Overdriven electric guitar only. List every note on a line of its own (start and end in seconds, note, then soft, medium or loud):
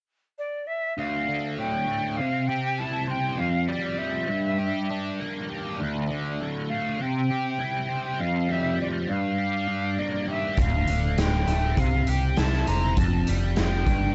0.98 2.18 D2 medium
1.28 2.19 D3 medium
1.58 2.18 A2 medium
1.87 2.18 A3 medium
2.20 3.37 C3 medium
2.49 3.39 G4 medium
2.80 3.39 E4 medium
3.07 3.38 C5 medium
3.37 4.28 F2 medium
3.68 4.29 G3 medium
3.98 4.29 F3 medium
4.28 5.79 G2 medium
4.58 5.48 G4 medium
4.90 5.80 D4 medium
5.20 5.79 A#3 medium
5.50 5.79 G4 medium
5.80 6.99 D2 medium
6.10 7.00 D3 medium
6.41 7.00 A2 medium
6.71 7.00 A3 medium
7.00 8.19 C3 medium
7.31 8.20 G4 medium
7.60 8.19 E4 medium
7.89 8.19 C5 medium
8.19 9.08 F2 medium
8.49 9.09 G3 medium
8.79 9.09 F3 medium
9.08 10.58 G2 medium
9.38 10.27 G4 medium
9.68 10.58 D4 medium
9.98 10.58 A#3 medium
10.28 10.58 G4 medium
10.59 11.77 D2 medium
10.89 11.78 D3 medium
11.18 11.78 A2 medium
11.49 11.78 A3 medium
11.78 12.97 C3 medium
12.08 12.97 G4 medium
12.38 12.97 E4 medium
12.68 12.97 C5 medium
12.98 13.87 F2 medium
13.28 13.87 G3 medium
13.57 13.87 F3 medium
13.87 14.15 G2 medium